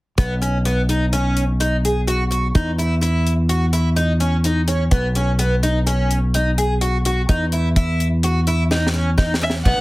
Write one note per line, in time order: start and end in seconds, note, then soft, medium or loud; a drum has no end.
0.18 2.51 B1 medium
0.18 0.33 B3 medium
0.18 kick medium
0.18 closed hi-hat medium
0.42 0.57 C#4 medium
0.42 closed hi-hat soft
0.65 0.81 B3 medium
0.65 closed hi-hat medium
0.89 1.05 D#4 medium
0.89 closed hi-hat soft
1.13 1.44 C#4 medium
1.13 closed hi-hat medium
1.37 closed hi-hat soft
1.60 1.76 D#4 medium
1.60 closed hi-hat medium
1.85 2.00 G#4 soft
1.85 closed hi-hat soft
2.07 2.23 F#4 medium
2.07 closed hi-hat medium
2.31 2.46 F#4 medium
2.31 closed hi-hat soft
2.55 4.88 E2 medium
2.55 2.70 D#4 medium
2.55 kick medium
2.55 closed hi-hat medium
2.78 2.94 E4 medium
2.78 closed hi-hat soft
3.01 3.33 E4 medium
3.01 closed hi-hat medium
3.27 closed hi-hat soft
3.49 3.65 F#4 medium
3.49 closed hi-hat medium
3.73 3.89 E4 medium
3.73 closed hi-hat soft
3.96 4.12 D#4 medium
3.96 closed hi-hat medium
4.20 4.36 C#4 medium
4.20 closed hi-hat soft
4.44 4.60 D#4 medium
4.44 closed hi-hat medium
4.68 4.83 C#4 medium
4.68 closed hi-hat soft
4.91 7.24 B1 medium
4.91 5.07 B3 medium
4.91 kick medium
4.91 closed hi-hat medium
5.15 5.31 C#4 medium
5.15 closed hi-hat soft
5.39 5.54 B3 medium
5.39 closed hi-hat medium
5.63 5.78 D#4 medium
5.63 closed hi-hat soft
5.87 6.18 C#4 medium
5.87 closed hi-hat medium
6.11 closed hi-hat soft
6.34 6.50 D#4 medium
6.34 closed hi-hat medium
6.58 6.73 G#4 medium
6.58 closed hi-hat medium
6.81 6.97 F#4 medium
6.81 closed hi-hat medium
7.05 7.21 F#4 medium
7.05 closed hi-hat medium
7.29 9.62 E2 medium
7.29 7.44 D#4 medium
7.29 kick medium
7.29 closed hi-hat medium
7.52 7.68 E4 medium
7.52 closed hi-hat soft
7.76 8.07 E4 medium
7.76 kick medium
7.76 closed hi-hat medium
8.00 closed hi-hat soft
8.23 8.39 F#4 medium
8.23 closed hi-hat medium
8.47 8.63 E4 medium
8.47 closed hi-hat soft
8.71 8.86 D#4 medium
8.71 snare soft
8.87 snare soft
8.94 9.09 C#4 medium
9.18 9.33 D#4 medium
9.18 kick medium
9.18 snare soft
9.34 snare medium
9.41 9.57 C#4 medium
9.41 9.54 E5 medium
9.50 snare medium
9.65 9.76 B1 medium
9.65 9.81 B3 medium
9.65 9.81 F#5 medium
9.65 kick medium
9.65 crash medium
9.78 9.81 B1 medium